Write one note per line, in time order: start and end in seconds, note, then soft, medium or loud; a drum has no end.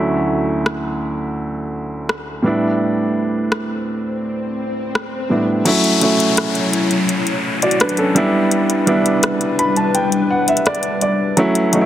0.00 2.39 D2 medium
0.00 2.40 F#3 medium
0.00 2.41 A3 medium
0.00 2.41 C#4 medium
0.00 2.42 E4 medium
0.00 swell medium
0.66 cross-stick loud
2.09 cross-stick loud
2.42 5.25 A2 medium
2.42 5.26 G3 medium
2.42 5.26 B3 medium
2.42 5.27 D4 medium
2.47 5.27 E4 medium
3.52 cross-stick loud
4.95 cross-stick loud
5.29 5.65 A2 medium
5.29 5.66 G3 soft
5.29 5.66 B3 soft
5.29 5.66 D4 medium
5.29 5.66 E4 medium
5.65 5.87 F#3 medium
5.65 8.13 F#3 medium
5.65 5.87 A3 medium
5.65 5.88 C#4 medium
5.65 8.13 E4 medium
5.65 5.88 E4 medium
5.65 8.13 C#5 medium
5.65 closed hi-hat medium
5.65 crash medium
5.65 downlifter medium
5.84 closed hi-hat soft
6.01 6.87 F#3 medium
6.01 6.88 A3 medium
6.01 6.88 C#4 medium
6.01 6.88 E4 medium
6.01 closed hi-hat medium
6.20 closed hi-hat soft
6.37 cross-stick loud
6.37 closed hi-hat medium
6.55 closed hi-hat soft
6.73 closed hi-hat medium
6.91 closed hi-hat soft
7.09 closed hi-hat medium
7.27 closed hi-hat soft
7.62 7.80 F#4 medium
7.62 7.79 D5 medium
7.62 closed hi-hat medium
7.71 closed hi-hat medium
7.80 7.98 D4 medium
7.80 7.97 B4 medium
7.80 cross-stick loud
7.80 closed hi-hat soft
7.89 closed hi-hat soft
7.97 8.32 C#4 medium
7.97 8.32 A4 medium
7.97 closed hi-hat soft
8.15 8.72 G3 medium
8.15 11.34 G3 medium
8.15 8.73 B3 medium
8.15 11.34 D4 medium
8.15 8.73 D4 medium
8.15 8.74 E4 loud
8.15 11.34 B4 medium
8.15 closed hi-hat medium
8.51 closed hi-hat medium
8.70 closed hi-hat soft
8.86 9.73 G3 medium
8.86 9.73 B3 medium
8.86 9.73 D4 medium
8.86 9.74 E4 medium
8.86 closed hi-hat medium
9.06 closed hi-hat soft
9.23 cross-stick loud
9.23 closed hi-hat medium
9.41 closed hi-hat soft
9.59 9.75 B5 medium
9.59 closed hi-hat medium
9.76 9.93 A5 medium
9.76 closed hi-hat soft
9.95 10.28 G5 medium
9.95 closed hi-hat medium
10.12 closed hi-hat soft
10.30 10.47 F#5 medium
10.48 10.65 E5 medium
10.48 closed hi-hat medium
10.57 closed hi-hat medium
10.66 10.99 D5 medium
10.66 cross-stick loud
10.66 closed hi-hat soft
10.75 closed hi-hat soft
10.83 closed hi-hat soft
11.01 11.35 D5 medium
11.01 closed hi-hat medium
11.37 11.59 F#3 medium
11.37 11.86 F#3 medium
11.37 11.59 A3 medium
11.37 11.59 C#4 medium
11.37 11.86 E4 medium
11.37 11.60 E4 medium
11.37 11.86 C#5 medium
11.37 closed hi-hat medium
11.55 closed hi-hat soft
11.73 11.86 F#3 medium
11.73 11.86 A3 medium
11.73 11.86 C#4 medium
11.73 11.80 D#4 medium
11.73 closed hi-hat medium
11.81 11.86 E4 medium